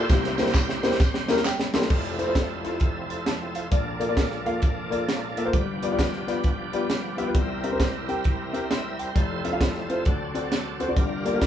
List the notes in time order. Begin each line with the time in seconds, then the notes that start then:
Already playing: G4 C5
0.09 C2 C3 A#3 E4, kick, snare, tambourine
0.24 snare
0.38 A#3 E4 G4 C5, snare, tambourine
0.46 snare
0.54 kick, snare, clap, tambourine
0.69 snare
0.83 A#3 E4 G4 C5, snare, tambourine
0.92 snare
1.00 kick, snare, tambourine
1.14 snare
1.28 A#3 E4 G4 A#4 E5, snare, tambourine
1.37 snare
1.45 G5, snare, clap, tambourine
1.60 snare
1.74 A#3 E4 G4 A4 C6, snare, tambourine
1.82 snare
1.90 F1 F2 F3 C4 E4 A4, kick, crash
2.18 A3 E4 F4 C5, closed hi-hat
2.26 A3 E4 F4 C5
2.35 kick, snare, closed hi-hat
2.63 A3 E4 F4 A4, snare, closed hi-hat
2.80 kick, closed hi-hat
3.09 C6, closed hi-hat
3.26 A5, snare, closed hi-hat
3.55 F5, closed hi-hat
3.71 A#1 A#2 F3 A#3 D4 A4, kick, closed hi-hat
4.00 A#3 F4 A4 D5, closed hi-hat
4.08 A#3 F4 A4 D5
4.17 kick, snare, closed hi-hat
4.31 snare
4.46 A#3 F4 A4 F5, closed hi-hat
4.62 kick, closed hi-hat
4.90 A#3 F4 A4 D5, closed hi-hat
5.09 snare, closed hi-hat
5.37 A#3 F4 A4 E5, closed hi-hat
5.45 A#3 F4 A4 C5
5.53 G1 G2 F3 B3 D4 G4, kick, closed hi-hat
5.82 B3 F4 G4 D5, closed hi-hat
5.91 B3 F4 G4 D5
5.99 kick, snare, closed hi-hat
6.13 snare
6.27 B3 F4 G4 D5, snare, closed hi-hat
6.44 kick, closed hi-hat
6.73 B3 F4 G4 D5, closed hi-hat
6.90 snare, closed hi-hat
7.17 B3 F4 G4 E5, closed hi-hat
7.26 B3 F4 G4 B4
7.35 C2 C3 G3 C4 E4 A#4, kick, closed hi-hat
7.64 C4 G4 A#4 E5, closed hi-hat
7.72 C4 G4 A#4 C5
7.80 kick, snare, closed hi-hat
8.08 C4 G4 A#4 G5, closed hi-hat
8.24 kick, closed hi-hat
8.53 C4 G4 A#4 E5, closed hi-hat
8.70 E5 C6, snare, closed hi-hat
8.99 C5 G5, closed hi-hat
9.15 F1 F2 F3 C4 E4 A4, kick, closed hi-hat
9.44 C4 F4 A4 E5, closed hi-hat
9.52 C4 F4 A4 F5
9.61 kick, snare, closed hi-hat
9.75 snare
9.89 C4 F4 A4 C5, closed hi-hat
10.05 D2 D3 F#3 C4 D4 A4, kick, closed hi-hat
10.34 C4 F#4 A4 D5, closed hi-hat
10.52 snare, closed hi-hat
10.80 C4 F#4 A4 C5, closed hi-hat
10.88 C4 F#4 A4 D5
10.96 G1 G2 G3 D4 F4 A#4, kick, closed hi-hat
11.25 A#3 F4 G4 D5, closed hi-hat
11.34 A#3 F4 G4 D5
11.42 kick, snare, closed hi-hat